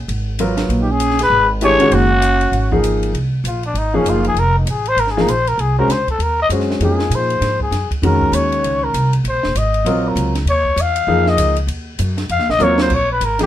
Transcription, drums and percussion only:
0.09 ride
0.39 hi-hat pedal, ride
0.57 snare, ride
0.70 ride
1.00 hi-hat pedal, ride
1.10 snare
1.19 snare, ride
1.61 hi-hat pedal, ride
1.80 ride
1.92 ride
2.22 hi-hat pedal, ride
2.41 ride
2.53 ride
2.71 kick
2.84 hi-hat pedal, ride
3.03 ride
3.15 ride
3.45 hi-hat pedal, ride
3.63 ride
3.75 ride
4.06 hi-hat pedal, ride
4.24 ride
4.37 ride
4.67 hi-hat pedal, ride
4.86 ride
4.98 ride
5.07 snare
5.17 snare
5.28 hi-hat pedal, ride
5.47 ride
5.59 ride
5.90 snare, hi-hat pedal, ride
6.08 kick, ride
6.20 ride
6.50 hi-hat pedal, ride
6.60 snare
6.70 snare
6.81 ride
6.99 snare
7.11 hi-hat pedal, ride
7.30 ride
7.42 snare, ride
7.60 kick
7.72 snare, hi-hat pedal, ride
7.91 kick, ride
8.03 ride
8.21 kick
8.33 hi-hat pedal, ride
8.52 ride
8.64 ride
8.94 hi-hat pedal, ride
9.13 ride
9.25 ride
9.43 snare
9.55 hi-hat pedal, ride
9.74 ride
9.86 ride
10.17 hi-hat pedal, ride
10.35 snare, ride
10.47 ride
10.65 kick
10.77 hi-hat pedal, ride
10.96 ride
11.26 snare
11.38 hi-hat pedal, ride
11.56 ride
11.68 ride
11.99 hi-hat pedal, ride
12.18 snare, ride
12.29 ride
12.39 snare
12.50 snare
12.60 hi-hat pedal
12.78 snare
12.90 kick, crash
13.21 hi-hat pedal, ride
13.39 snare, ride

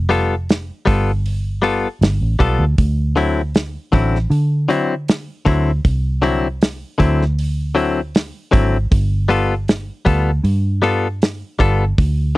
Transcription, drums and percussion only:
0.11 open hi-hat
0.49 snare, open hi-hat
0.87 kick, open hi-hat
1.26 open hi-hat
1.64 open hi-hat
2.02 snare, open hi-hat
2.40 kick, open hi-hat
2.78 kick, open hi-hat
3.17 open hi-hat
3.55 snare, open hi-hat
3.93 kick, open hi-hat
4.15 snare
4.31 open hi-hat
4.70 open hi-hat
5.08 snare, open hi-hat
5.46 kick, open hi-hat
5.85 kick, open hi-hat
6.23 open hi-hat
6.62 snare, open hi-hat
7.00 kick, open hi-hat
7.21 snare
7.39 open hi-hat
7.77 open hi-hat
8.15 snare, open hi-hat
8.53 kick, open hi-hat
8.92 kick, open hi-hat
9.30 open hi-hat
9.68 snare, open hi-hat
10.06 kick, open hi-hat
10.45 open hi-hat
10.84 open hi-hat
11.22 snare, open hi-hat
11.60 kick, open hi-hat
11.98 kick, open hi-hat

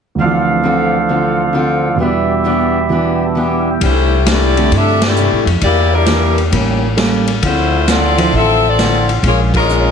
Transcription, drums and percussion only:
3.81 kick, ride
4.26 snare, hi-hat pedal, ride
4.57 ride
4.71 kick, ride
5.01 snare, ride
5.16 hi-hat pedal
5.47 ride
5.61 kick, ride
6.06 snare, hi-hat pedal, ride
6.38 ride
6.52 kick, ride
6.97 snare, hi-hat pedal, ride
7.27 ride
7.42 kick, ride
7.88 snare, hi-hat pedal, ride
8.18 ride
8.33 kick
8.79 snare, hi-hat pedal, ride
9.09 ride
9.23 kick, ride
9.54 kick, ride
9.69 hi-hat pedal

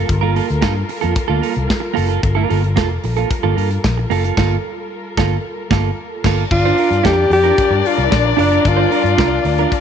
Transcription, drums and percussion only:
0.09 kick, closed hi-hat
0.36 open hi-hat
0.50 closed hi-hat
0.62 kick, snare, closed hi-hat
0.89 open hi-hat
1.02 closed hi-hat
1.16 kick, closed hi-hat
1.43 open hi-hat
1.56 closed hi-hat
1.70 kick, snare, closed hi-hat
1.97 open hi-hat
2.10 closed hi-hat
2.23 kick, closed hi-hat
2.50 open hi-hat
2.64 closed hi-hat
2.77 kick, snare, closed hi-hat
3.04 open hi-hat
3.17 closed hi-hat
3.31 kick, closed hi-hat
3.58 open hi-hat
3.71 closed hi-hat
3.84 kick, snare, closed hi-hat
4.11 open hi-hat
4.24 closed hi-hat
4.37 kick, snare, crash
5.17 kick, snare
5.71 kick, snare
6.24 kick, snare, crash
6.51 kick, crash
6.78 open hi-hat
6.93 closed hi-hat
7.05 kick, snare, closed hi-hat
7.31 open hi-hat
7.44 closed hi-hat
7.58 kick, closed hi-hat
7.86 open hi-hat
7.98 closed hi-hat
8.12 kick, snare, closed hi-hat
8.39 open hi-hat
8.52 closed hi-hat
8.65 kick, closed hi-hat
8.92 open hi-hat
9.06 closed hi-hat
9.18 kick, snare, closed hi-hat
9.45 open hi-hat
9.58 closed hi-hat
9.72 kick, closed hi-hat

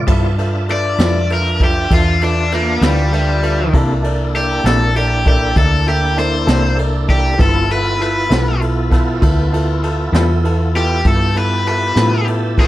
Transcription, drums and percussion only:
0.07 kick, crash
0.38 ride
0.69 ride
0.99 snare, ride
1.30 ride
1.60 kick, ride
1.91 kick, ride
2.21 ride
2.52 ride
2.82 snare, ride
3.13 ride
3.43 ride
3.74 kick, ride
4.04 ride
4.35 ride
4.66 snare, ride
4.96 ride
5.26 kick, ride
5.56 kick, ride
5.87 ride
6.18 snare, ride
6.48 snare, ride
6.79 ride
7.09 kick, ride
7.39 kick, ride
7.70 ride
8.01 ride
8.31 snare, ride
8.62 ride
8.91 kick, snare, ride
9.22 kick, ride
9.53 ride
9.83 ride
10.14 snare, ride
10.45 ride
10.75 ride
11.05 kick, ride
11.36 ride
11.66 ride
11.96 snare, ride
12.27 ride
12.58 kick, ride

